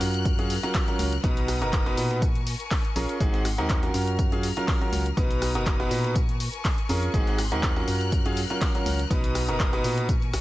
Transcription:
Already playing: F#3 C#4 F4 F#4 A#4 F#6
0.01 F#2 A#4 F6, snare, open hi-hat, tambourine
0.14 closed hi-hat
0.25 kick, closed hi-hat, tambourine
0.39 F#3 C#4 F4 F#4 G#4, closed hi-hat
0.50 open hi-hat, tambourine
0.63 F#3 C#4 F4 F#4 A#4, closed hi-hat
0.74 kick, snare, clap, closed hi-hat, open hi-hat
0.88 F#3 C#4 F4 F#4 A#4, closed hi-hat
0.99 C#2, snare, open hi-hat, tambourine
1.12 closed hi-hat
1.24 B1 B2 B3 D#4 F#4 B4 A#5 D#6, kick, closed hi-hat, tambourine
1.37 closed hi-hat
1.48 cross-stick, open hi-hat, tambourine
1.62 F#1 B2 B3 D#4 F#4 A#4, closed hi-hat
1.73 kick, snare, clap, closed hi-hat, tambourine
1.86 B2 B3 D#4 F#4 B4, cross-stick, closed hi-hat
1.97 A#2, open hi-hat, tambourine
2.11 snare, closed hi-hat
2.22 A#4 G#5 C#6, kick, closed hi-hat, tambourine
2.35 closed hi-hat
2.47 open hi-hat, tambourine
2.60 closed hi-hat
2.71 kick, snare, clap, open hi-hat, tambourine
2.85 closed hi-hat
2.96 A#1 C#4 F4 G#4 A#4, open hi-hat, tambourine
3.09 closed hi-hat
3.20 G#1 G#2 C4 D#4 F#4 G#4 F#5 C6, kick, closed hi-hat, tambourine
3.34 snare, closed hi-hat
3.45 cross-stick, open hi-hat, tambourine
3.58 D#2 G#2 C4 D#4 F#4 A#4, closed hi-hat
3.70 kick, snare, clap, closed hi-hat, tambourine
3.83 F#3 C#4 F4 F#4 A#4, cross-stick, snare, closed hi-hat
3.94 F#2 A#4 F6, snare, open hi-hat, tambourine
4.07 closed hi-hat
4.19 kick, closed hi-hat, tambourine
4.32 F#3 C#4 F4 F#4 G#4, closed hi-hat
4.43 open hi-hat, tambourine
4.57 F#3 C#4 F4 F#4 A#4, closed hi-hat
4.68 kick, snare, clap, closed hi-hat, open hi-hat
4.81 F#3 C#4 F4 F#4 A#4, closed hi-hat
4.93 C#2, snare, open hi-hat, tambourine
5.06 closed hi-hat
5.17 B1 B2 B3 D#4 F#4 B4 A#5 D#6, kick, closed hi-hat, tambourine
5.31 closed hi-hat
5.42 cross-stick, open hi-hat, tambourine
5.55 F#1 B2 B3 D#4 F#4 A#4, closed hi-hat
5.66 kick, snare, clap, closed hi-hat, tambourine
5.80 B2 B3 D#4 F#4 B4, cross-stick, closed hi-hat
5.91 A#2, open hi-hat, tambourine
6.04 snare, closed hi-hat
6.15 A#4 G#5 C#6, kick, closed hi-hat, tambourine
6.29 closed hi-hat
6.40 open hi-hat, tambourine
6.53 closed hi-hat
6.65 kick, snare, clap, open hi-hat, tambourine
6.78 closed hi-hat
6.89 F2 C#4 F4 G#4 A#4, open hi-hat, tambourine
7.03 closed hi-hat
7.14 G#1 G#2 C4 D#4 F#4 G#4 C6 F#6, kick, closed hi-hat, tambourine
7.27 snare, closed hi-hat
7.38 cross-stick, open hi-hat, tambourine
7.52 D#2 G#2 C4 D#4 F#4 A#4, closed hi-hat
7.63 kick, snare, clap, closed hi-hat, tambourine
7.76 F#3 C#4 F4 F#4 A#4, cross-stick, snare, closed hi-hat
7.87 F#2 A#4 F6, snare, open hi-hat, tambourine
8.01 closed hi-hat
8.12 kick, closed hi-hat, tambourine
8.26 F#3 C#4 F4 F#4 G#4, closed hi-hat
8.37 open hi-hat, tambourine
8.50 F#3 C#4 F4 F#4 A#4, closed hi-hat
8.61 kick, snare, clap, closed hi-hat, open hi-hat
8.75 F#3 C#4 F4 F#4 A#4, closed hi-hat
8.86 C#2, snare, open hi-hat, tambourine
8.99 closed hi-hat
9.10 B1 B2 B3 D#4 F#4 B4 A#5 D#6, kick, closed hi-hat, tambourine
9.24 closed hi-hat
9.35 cross-stick, open hi-hat, tambourine
9.48 F#1 B2 B3 D#4 F#4 A#4, closed hi-hat
9.60 kick, snare, clap, closed hi-hat, tambourine
9.73 B2 B3 D#4 F#4 B4, cross-stick, closed hi-hat
9.84 A#2, open hi-hat, tambourine
9.98 snare, closed hi-hat
10.09 A#4 G#5 C#6, kick, closed hi-hat, tambourine
10.22 closed hi-hat
10.33 G#1, cross-stick, snare, open hi-hat, tambourine

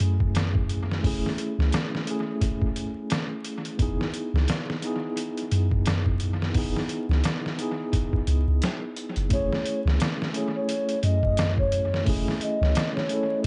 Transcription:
Already playing: A3 C#4 E4 G#4
0.00 F#2, closed hi-hat
0.20 kick
0.35 snare, closed hi-hat
0.55 kick
0.69 closed hi-hat
0.91 snare
1.02 F#1 A3 C#4 E4, kick, open hi-hat
1.07 G#4
1.26 snare
1.38 closed hi-hat
1.58 C#2, snare
1.72 snare, closed hi-hat
1.95 snare
2.05 A3 C#4 E4, closed hi-hat
2.11 G#4
2.41 kick, closed hi-hat
2.62 kick
2.76 closed hi-hat
3.10 snare, closed hi-hat
3.44 closed hi-hat
3.65 closed hi-hat
3.78 F#1 B3 D#4 E4, kick, closed hi-hat
3.82 G#4
4.01 snare
4.14 closed hi-hat
4.34 C#2, snare
4.48 snare, closed hi-hat
4.70 snare
4.82 B3 D#4 E4, closed hi-hat
4.86 G#4
5.17 closed hi-hat
5.37 closed hi-hat
5.51 F#2, closed hi-hat
5.71 kick
5.86 snare, closed hi-hat
6.06 kick
6.20 closed hi-hat
6.42 snare
6.53 F#1 B3 D#4 E4, kick, open hi-hat
6.58 G#4
6.76 snare
6.89 closed hi-hat
7.09 C#2, snare
7.24 snare, closed hi-hat
7.46 snare
7.57 B3 D#4 E4, closed hi-hat
7.62 G#4
7.93 kick, closed hi-hat
8.13 kick
8.27 C#2, closed hi-hat
8.48 C#2
8.62 snare, closed hi-hat
8.96 closed hi-hat
9.16 F#1, closed hi-hat
9.30 F#1 A3 C#4 E4 C#5, kick, closed hi-hat
9.35 G#4
9.53 snare
9.66 closed hi-hat
9.85 C#2, snare
10.00 snare, closed hi-hat
10.22 snare
10.33 A3 C#4 E4, closed hi-hat
10.37 G#4
10.55 C#5
10.69 closed hi-hat
10.89 closed hi-hat
11.03 F#2 D#5, closed hi-hat
11.23 kick
11.37 snare, closed hi-hat
11.58 C#5, kick
11.72 closed hi-hat
11.94 snare
12.04 F#1 A3 C#4 E4, kick, open hi-hat
12.09 G#4
12.28 snare
12.41 D#5, closed hi-hat
12.61 C#2, snare
12.75 snare, closed hi-hat
12.95 C#5, snare
13.09 A3 C#4 E4, closed hi-hat
13.14 A4

